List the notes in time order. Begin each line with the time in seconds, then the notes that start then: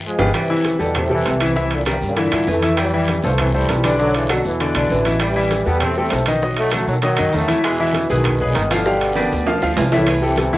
0.05 F3 G#3
0.19 G1 F4 G4 B4, low bongo, high conga, high timbale, long guiro, claves, maracas
0.34 C3 E3 G3, high bongo, high conga, high timbale, long guiro, claves, maracas
0.50 E3 E4 E5, high conga, maracas
0.64 high bongo, high conga, high timbale, short guiro, maracas
0.79 E2 B2 D3 E3 G3 G4 A4, high bongo, short guiro, maracas
0.94 A2 C3, high bongo, high conga, low conga, high timbale, long guiro, claves, maracas
1.10 C3 E3 G3 G4 A4, high bongo, high conga, low conga, maracas
1.24 C2 C3, high bongo, low bongo, high timbale, low timbale, short guiro, maracas
1.40 E3 E4 E5, high bongo, high conga, high timbale, short guiro, claves, maracas
1.55 C3 E3 E4 E5, high bongo, high conga, long guiro, maracas
1.71 D3, high conga, high timbale, maracas
1.75 A#2
1.86 G2 C3 G3 G4 A#4, high bongo, high conga, high timbale, short guiro, claves, maracas
2.01 G2, high bongo, high conga, short guiro, maracas
2.06 A#2 D3
2.16 E3 E4 E5, high bongo, high conga, high timbale, long guiro, maracas
2.32 G2 E3 E4 E5, high bongo, high conga, high timbale, claves, maracas
2.47 F2 E3 A3, high bongo, low bongo, high conga, short guiro, maracas
2.62 E3 E4 E5, high bongo, high conga, high timbale, short guiro, maracas
2.77 E3 G3, high bongo, high conga, high timbale, long guiro, claves, maracas
2.94 E3 E4 E5, maracas
3.07 high bongo, high conga, high timbale, short guiro, maracas
3.23 C2 D3 E3 F3 A3 A4 C5, short guiro, maracas
3.38 C3 E3, high bongo, high conga, low conga, high timbale, long guiro, claves, maracas
3.54 E3 G3 A3 A4 C5, high bongo, high conga, maracas
3.68 B1 C3, high bongo, low bongo, high timbale, low timbale, short guiro, maracas
3.84 D3 E3 D4 D5, high bongo, high conga, high timbale, short guiro, claves, maracas
3.98 D3 F#3 D4 D5, high bongo, high conga, long guiro, maracas
4.14 C#3 E3, high timbale, maracas
4.29 B2 D3 F#3 F#4 A4, high bongo, high conga, high timbale, short guiro, claves, maracas
4.44 E2 B2 E3, high bongo, high conga, short guiro, maracas
4.60 D3 D4 D5, high bongo, high timbale, long guiro, maracas
4.75 B1 D3 D4 D5, high bongo, high timbale, claves, maracas
4.90 A1 B2 E3, high bongo, low bongo, high conga, short guiro, maracas
5.05 E3 E4 E5, high bongo, high conga, high timbale, short guiro, maracas
5.20 E3 G3, high bongo, high conga, high timbale, long guiro, claves, maracas
5.36 E3 E4 E5, high conga, maracas
5.51 high bongo, high conga, high timbale, short guiro, maracas
5.65 E2 E3 G3 B3 G4 A4, high bongo, short guiro, maracas
5.80 A3 C4, high bongo, high conga, low conga, high timbale, long guiro, claves, maracas
5.96 G3 A3 C4 G4 A4, high bongo, high conga, maracas
6.10 B1 C3, high bongo, low bongo, high conga, high timbale, low timbale, short guiro, maracas
6.26 D#3 E3 D#4 D#5, high bongo, high conga, high timbale, short guiro, claves, maracas
6.42 F#3 D#4 D#5, high bongo, high conga, long guiro, maracas
6.56 F#3 A3, high timbale, maracas
6.71 F#3 A3 F#4 A4, high bongo, high conga, high timbale, short guiro, claves, maracas
6.87 B2 D#3 F#3, high bongo, high conga, short guiro, maracas
7.02 D#3 F#3 D#4 D#5, high bongo, high conga, high timbale, long guiro, maracas
7.17 F#2 D#3 D#4 D#5, high bongo, high timbale, claves, maracas
7.33 E2 D#3 F#3 A3, high bongo, low bongo, high conga, short guiro, maracas
7.48 E3 E4 E5, high bongo, high conga, high timbale, short guiro, maracas
7.63 B2 E3 G#3, high bongo, high conga, high timbale, long guiro, claves, maracas
7.79 E3 E4 E5, high conga, maracas
7.93 high bongo, high conga, high timbale, short guiro, maracas
8.09 B1 B2 D#3 E3 G#3 G#4 B4, high bongo, short guiro, maracas
8.24 high bongo, high conga, low conga, high timbale, long guiro, claves, maracas
8.40 A#2 C#3 G#3 G#4 B4, high bongo, high conga, low conga, maracas
8.55 G1 D#3, high bongo, low bongo, high conga, high timbale, short guiro, maracas
8.59 B2 D#3
8.71 B2 D3 E3 F3 F4 F5, high bongo, high conga, high timbale, short guiro, claves, maracas
8.86 G3 G4 F5, high bongo, high conga, long guiro, maracas
9.01 high conga, high timbale, maracas
9.15 G3 B3 B4 D5, high bongo, high conga, high timbale, short guiro, claves, maracas
9.32 D2, high bongo, high conga, short guiro, maracas
9.47 F3 F4 F5, high conga, high timbale, long guiro, maracas
9.62 D2 F3 F4 F5, high conga, low timbale, claves, maracas
9.77 C2 G2 C3 E3, high conga, low timbale, short guiro, maracas
9.92 E2 A2 E3 E4 E5, low bongo, high conga, low timbale, short guiro, maracas
10.07 E3, high bongo, high conga, high timbale, long guiro, claves, maracas
10.22 C3 E3 G3 G4 A4, high conga, maracas
10.37 G3 G4 A4, high bongo, high conga, high timbale, short guiro, maracas
10.53 E2 B2 D3 E3 E4 E5, high bongo, short guiro, maracas